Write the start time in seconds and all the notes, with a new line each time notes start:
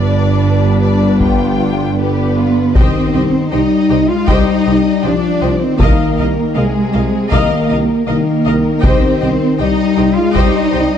Already playing: G1 G2 G3 B3 D4 B4 D5
0.81 D5
1.20 F3 F4 G5, taiko
1.99 D3 B3 G4 B4
2.37 F4
2.75 C2 D#3 C4 G4 C5 D#5 G5, taiko
3.14 C2 G4 C5 D#5 G5
3.52 C2 G3 D#4 G4 C5 D#5 G5
3.90 C2 G4 C5 D#5 G5
4.09 G#3 F4 F5
4.27 C2 G3 D#4 G4 C5 D#5 G5, taiko
4.65 C2 G4 C5 D#5 G5
5.03 C2 F3 D4 G4 C5 D5 D#5 G5
5.41 C2 G4 C5 D#5 G5
5.61 D#3 C4 C5
5.79 C2 D#3 A#3 A#4 D#5 F5, taiko
6.18 C2 A#4 D#5 F5
6.55 C2 C3 G#3 G#4 A#4 D#5 F5
6.93 C2 A#4 D#5 F5
7.31 C2 D#3 A#3 A#4 D#5 F5, taiko
7.69 C2 A#4 D#5 F5
8.07 C2 D#3 A#3 A#4 D#5 F5
8.45 C2 A#4 D#5 F5
8.82 C2 D#3 C4 G4 C5 D#5 G5, taiko
9.21 C2 G4 C5 D#5 G5
9.59 C2 G3 D#4 G4 C5 D#5 G5
9.97 C2 G4 C5 D#5 G5
10.16 G#3 F4 F5
10.33 C2 G3 D#4 G4 C5 D#5 G5, taiko
10.72 C2 G4 C5 D#5 G5